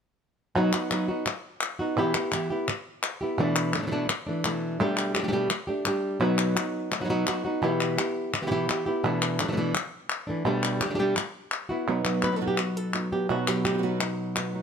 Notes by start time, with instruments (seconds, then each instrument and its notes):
0.55 nylon-string guitar B2 F#3 B3 D#4 F#4
0.73 nylon-string guitar B3 D#4 F#4, clap
0.91 nylon-string guitar F#3 B3 D#4 F#4, clap
1.08 nylon-string guitar B3 D#4 F#4
1.26 muted nylon-string guitar stroke, clap
1.61 clap
1.79 nylon-string guitar B3 D#4 F#4
1.97 nylon-string guitar B2 E3 B3 E4 G4
2.14 nylon-string guitar B3 E4 G4, clap
2.32 nylon-string guitar E3 B3 E4 G4, clap
2.50 nylon-string guitar B3 E4 G4
2.68 muted nylon-string guitar stroke, clap
3.03 clap
3.21 nylon-string guitar B3 E4 G4
3.38 nylon-string guitar B2 E3 A3 D4
3.56 clap
3.73 nylon-string guitar E3 A3 D4, clap
3.78 nylon-string guitar B2 A3 D4
3.83 nylon-string guitar B2 E3 A3 D4
3.87 nylon-string guitar B2 E3 A3 D4
3.91 nylon-string guitar B2 E3 A3 D4
4.09 muted nylon-string guitar stroke, clap
4.27 nylon-string guitar E3 A3 D4
4.44 nylon-string guitar B2 E3 A3 D4, clap
4.80 nylon-string guitar B2 G3 A3 D4 G4
4.97 clap
5.14 nylon-string guitar A3 D4 G4, clap
5.19 nylon-string guitar G3 D4 G4
5.23 nylon-string guitar G3 A3 D4 G4
5.28 nylon-string guitar G3 A3 D4 G4
5.32 nylon-string guitar B2 G3 A3 D4 G4
5.50 muted nylon-string guitar stroke, clap
5.67 nylon-string guitar A3 D4 G4
5.85 nylon-string guitar G3 A3 D4 G4, clap
6.20 nylon-string guitar B2 F#3 B3 D#4 F#4
6.38 clap
6.56 nylon-string guitar B3 D#4 F#4, clap
6.91 muted nylon-string guitar stroke, clap
7.00 nylon-string guitar F#3 B3 D#4 F#4
7.04 nylon-string guitar F#3 B3 D#4 F#4
7.09 nylon-string guitar B2 F#3 B3 D#4 F#4
7.27 nylon-string guitar F#3 B3 D#4 F#4, clap
7.45 nylon-string guitar B3 D#4 F#4
7.62 nylon-string guitar B2 E3 B3 E4 G4
7.81 clap
7.98 nylon-string guitar B3 E4 G4, clap
8.34 muted nylon-string guitar stroke, clap
8.42 nylon-string guitar E3 B3 E4 G4
8.46 nylon-string guitar E3 B3 E4 G4
8.51 nylon-string guitar B2 E3 B3 E4 G4
8.68 nylon-string guitar E3 B3 E4 G4, clap
8.86 nylon-string guitar B3 E4 G4
9.04 nylon-string guitar B2 E3 A3 D4
9.22 clap
9.39 nylon-string guitar B2 E3 A3 D4, clap
9.44 nylon-string guitar B2 A3 D4
9.49 nylon-string guitar B2 E3 A3 D4
9.53 nylon-string guitar E3 A3 D4
9.57 nylon-string guitar B2 E3 A3 D4
9.75 muted nylon-string guitar stroke, clap
10.10 clap
10.27 nylon-string guitar E3 A3 D4
10.45 nylon-string guitar B2 G3 A3 D4 G4
10.63 clap
10.81 nylon-string guitar A3 D4 G4, clap
10.85 nylon-string guitar G3 D4 G4
10.90 nylon-string guitar G3 A3 D4 G4
10.94 nylon-string guitar G3 A3 D4 G4
10.98 nylon-string guitar B2 G3 A3 D4 G4
11.16 muted nylon-string guitar stroke, clap
11.52 clap
11.69 nylon-string guitar B3 E4 F#4
11.87 nylon-string guitar B2 F#3 B3 D#4 F#4
12.05 nylon-string guitar F#3, clap
12.23 nylon-string guitar B3 D#4 F#4 B4, clap
12.32 nylon-string guitar F#3 B3 D#4 F#4
12.36 nylon-string guitar F#3 B3 D#4 F#4 A4
12.41 nylon-string guitar B2 F#3 B3 D#4 F#4
12.48 nylon-string guitar G4
12.58 nylon-string guitar F#4, muted nylon-string guitar stroke, clap
12.77 nylon-string guitar A4
12.94 nylon-string guitar B3 D#4 F#4, clap
13.11 nylon-string guitar F#3 B3 D#4 F#4 G4
13.29 nylon-string guitar B2 F#3 B3 D#4 F#4
13.47 nylon-string guitar F#3 G4, clap
13.65 nylon-string guitar B3 D#4 F#4 G4, clap
13.69 nylon-string guitar F#3 B3 D#4 F#4
13.73 nylon-string guitar F#3 B3 D#4 F#4
13.78 nylon-string guitar F#3 B3 D#4 F#4
13.83 nylon-string guitar B2 F#3 B3 D#4 F#4
14.00 nylon-string guitar D#4, muted nylon-string guitar stroke, clap
14.35 nylon-string guitar B3 D#4 F#4, clap
14.53 nylon-string guitar F#3 B3 D#4 F#4